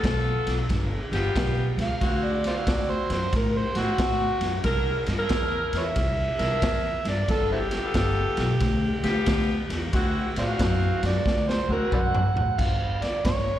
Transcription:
0.00 0.33 B1 medium
0.00 0.60 B3 loud
0.00 0.60 F4 medium
0.00 0.60 A4 loud
0.00 kick medium
0.00 ride medium
0.05 snare loud
0.47 0.62 B1 medium
0.47 snare soft
0.47 ride medium
0.69 0.99 G1 loud
0.69 kick medium
0.69 snare soft
0.69 ride medium
1.12 1.27 G1 medium
1.12 1.69 B3 medium
1.12 1.70 F4 medium
1.12 1.70 G4 medium
1.12 snare soft
1.12 ride medium
1.35 1.64 B1 medium
1.35 kick loud
1.35 snare loud
1.35 ride medium
1.77 1.93 C#2 medium
1.77 snare soft
1.77 ride medium
1.82 2.26 F5 loud
2.01 2.46 D2 loud
2.01 2.40 C4 medium
2.01 2.40 E4 medium
2.01 2.40 F#4 medium
2.01 kick medium
2.01 snare soft
2.01 ride medium
2.25 2.45 D5 medium
2.44 2.55 C5 medium
2.44 2.56 D5 medium
2.44 2.70 F5 medium
2.44 snare soft
2.44 ride medium
2.56 3.24 C4 medium
2.56 3.24 E4 medium
2.56 3.24 F#4 medium
2.67 2.96 D2 medium
2.67 2.92 D5 medium
2.67 kick medium
2.67 snare loud
2.67 ride medium
2.91 3.11 C5 loud
3.10 3.26 F#2 medium
3.10 3.33 C5 medium
3.10 snare soft
3.10 ride medium
3.33 3.62 A2 medium
3.33 3.58 A#4 medium
3.33 kick medium
3.33 snare soft
3.33 ride medium
3.57 3.79 C5 medium
3.75 3.91 A2 medium
3.75 4.33 C4 medium
3.75 4.33 E4 medium
3.75 4.33 F#4 medium
3.75 4.63 F#4 loud
3.75 snare soft
3.75 ride medium
3.98 4.28 A2 medium
3.98 kick loud
3.98 snare loud
3.98 ride medium
4.41 4.57 F#2 medium
4.41 snare soft
4.41 ride medium
4.64 4.93 C2 loud
4.64 5.03 D4 medium
4.64 5.03 E4 medium
4.64 5.03 A#4 loud
4.64 kick medium
4.64 snare soft
4.64 ride medium
5.06 5.23 G2 medium
5.06 snare soft
5.06 ride medium
5.18 5.87 D4 medium
5.18 5.87 E4 medium
5.18 5.87 A#4 loud
5.29 5.59 E2 medium
5.29 kick medium
5.29 snare loud
5.29 ride medium
5.72 5.88 E2 medium
5.72 snare soft
5.72 ride medium
5.78 5.87 B4 medium
5.78 5.84 C#5 medium
5.78 7.04 E5 loud
5.96 6.26 C2 medium
5.96 kick medium
5.96 snare soft
5.96 ride medium
6.39 6.55 C2 medium
6.39 6.97 D4 medium
6.39 6.97 E4 medium
6.39 6.97 A#4 medium
6.39 snare soft
6.39 ride medium
6.62 6.92 E2 medium
6.62 kick loud
6.62 snare loud
6.62 ride medium
7.05 7.21 G2 medium
7.05 snare soft
7.05 ride medium
7.09 7.29 D5 loud
7.28 7.74 G1 medium
7.28 7.67 B3 medium
7.28 7.67 F4 medium
7.28 7.67 A4 medium
7.28 7.51 A4 loud
7.28 kick medium
7.28 snare soft
7.28 ride medium
7.52 7.59 C4 medium
7.52 7.59 E4 medium
7.52 9.46 G4 loud
7.71 snare soft
7.71 ride medium
7.83 8.51 B3 medium
7.83 8.51 F4 medium
7.83 8.51 A4 medium
7.94 8.24 G1 medium
7.94 kick medium
7.94 snare loud
7.94 ride medium
8.37 8.53 B1 loud
8.37 snare soft
8.37 ride medium
8.60 8.90 D2 loud
8.60 kick medium
8.60 snare soft
8.60 ride medium
9.03 9.19 D2 loud
9.03 9.61 B3 medium
9.03 9.61 F4 medium
9.03 9.61 G4 loud
9.03 snare soft
9.03 ride medium
9.26 9.56 D2 medium
9.26 kick loud
9.26 snare loud
9.26 ride loud
9.70 9.85 E2 medium
9.70 snare soft
9.70 ride medium
9.93 10.22 D2 loud
9.93 10.32 C4 loud
9.93 10.32 E4 medium
9.93 10.32 F#4 loud
9.93 kick medium
9.93 snare soft
9.93 ride medium
10.36 10.52 A2 medium
10.36 10.46 C5 medium
10.36 10.46 D5 medium
10.36 11.02 F5 loud
10.36 snare soft
10.36 ride medium
10.48 11.16 E3 medium
10.48 11.16 C4 medium
10.48 11.16 F#4 medium
10.59 10.89 F#2 loud
10.59 kick medium
10.59 snare loud
10.59 ride medium
11.03 11.18 F#2 loud
11.03 11.51 D5 loud
11.03 snare soft
11.03 ride medium
11.26 11.55 D2 loud
11.26 kick medium
11.26 snare medium
11.49 11.70 C5 medium
11.49 snare medium
11.69 11.84 D2 medium
11.69 12.26 C4 medium
11.69 12.26 E4 medium
11.69 12.27 F#4 medium
11.69 11.92 A#4 loud
11.92 12.21 F#2 medium
11.92 11.99 B4 medium
11.92 12.00 D5 medium
11.92 12.61 F#5 loud
11.92 kick loud
11.92 mid tom medium
12.15 mid tom loud
12.35 12.51 A1 medium
12.35 floor tom medium
12.58 13.03 G1 medium
12.58 13.04 F5 loud
12.58 kick medium
12.58 snare soft
12.58 crash medium
13.02 13.24 D5 loud
13.02 snare soft
13.02 ride medium
13.25 13.54 G1 medium
13.25 13.59 C#5 loud
13.25 kick medium
13.25 snare loud
13.25 ride medium

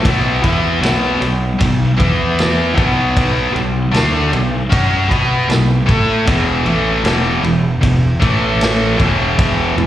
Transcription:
0.03 0.41 B1 medium
0.03 0.41 B2 loud
0.03 0.42 F#3 loud
0.03 0.42 B3 loud
0.03 kick loud
0.03 ride loud
0.42 0.80 E2 medium
0.42 0.81 E3 medium
0.42 0.81 B3 medium
0.42 0.81 E4 medium
0.42 kick medium
0.42 ride medium
0.81 1.18 B1 medium
0.81 1.19 B2 medium
0.81 1.19 F#3 medium
0.81 1.20 B3 loud
0.81 snare loud
0.81 ride loud
1.20 1.57 B1 medium
1.20 1.52 B2 medium
1.20 1.52 F#3 medium
1.20 ride medium
1.59 1.97 B1 medium
1.59 1.91 B2 medium
1.59 1.91 F#3 medium
1.59 kick loud
1.59 ride loud
1.98 2.73 E2 medium
1.98 2.74 E3 medium
1.98 2.74 B3 medium
1.98 2.75 E4 loud
1.98 kick loud
1.98 ride medium
2.39 snare loud
2.39 ride medium
2.74 3.51 B1 medium
2.74 3.52 B2 medium
2.74 3.52 F#3 medium
2.74 3.53 B3 medium
2.74 kick loud
2.74 ride medium
3.17 kick loud
3.17 ride loud
3.53 3.91 B1 medium
3.53 3.85 B2 medium
3.53 3.85 F#3 medium
3.53 ride medium
3.92 4.30 D2 medium
3.92 4.30 D3 medium
3.92 4.30 A3 medium
3.92 4.31 D4 loud
3.92 ride medium
3.96 snare loud
4.31 4.69 B1 medium
4.31 4.63 B2 medium
4.31 4.63 F#3 medium
4.31 ride medium
4.70 5.08 F#2 medium
4.70 5.08 F#3 medium
4.70 5.08 C#4 loud
4.70 5.08 F#4 loud
4.70 kick loud
4.70 ride medium
5.09 5.47 B2 medium
5.09 5.47 B3 medium
5.09 5.47 F#4 medium
5.09 5.48 B4 loud
5.09 kick loud
5.09 ride medium
5.47 5.85 B1 medium
5.47 5.79 B2 medium
5.47 5.80 F#3 medium
5.47 snare loud
5.47 ride medium
5.86 6.25 A2 medium
5.86 6.25 A3 medium
5.86 6.25 E4 medium
5.86 6.25 A4 loud
5.86 kick loud
5.86 ride medium
6.25 6.63 E1 medium
6.25 6.63 E2 loud
6.25 6.63 B2 loud
6.25 6.63 E3 loud
6.25 kick loud
6.25 ride medium
6.63 7.02 A1 medium
6.63 7.02 A2 medium
6.63 7.03 E3 medium
6.63 7.03 A3 loud
6.63 ride medium
7.04 7.40 E1 medium
7.04 7.42 E2 medium
7.04 7.42 B2 loud
7.04 7.42 E3 loud
7.04 snare loud
7.04 ride medium
7.43 7.79 E1 medium
7.43 7.74 E2 medium
7.43 7.75 B2 medium
7.43 ride medium
7.82 8.19 E1 medium
7.82 8.13 E2 medium
7.82 8.13 B2 medium
7.82 kick loud
7.82 ride loud
8.20 8.95 A1 loud
8.20 8.97 A2 medium
8.20 8.97 E3 loud
8.20 8.98 A3 medium
8.20 kick loud
8.20 ride medium
8.61 snare loud
8.61 ride loud
8.98 9.73 E1 medium
8.98 9.75 E2 medium
8.98 9.75 B2 medium
8.98 9.75 E3 loud
8.98 kick loud
8.98 ride medium
9.39 kick loud
9.39 ride loud
9.76 9.87 E1 medium
9.76 9.87 E2 medium
9.76 9.87 B2 medium
9.76 ride medium

